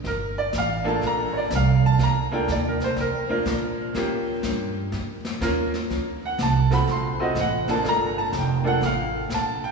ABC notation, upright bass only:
X:1
M:4/4
L:1/8
Q:"Swing" 1/4=123
K:Gm
V:1 name="Upright bass" clef=bass
G,,,2 A,,,2 B,,,2 C,,2 | D,,2 E,,2 F,,2 B,,2 | E,,2 G,,2 F,,2 E,,2 | D,,2 C,,2 B,,,2 A,,,2 |
G,,,2 F,,,2 A,,,2 B,,,2 |]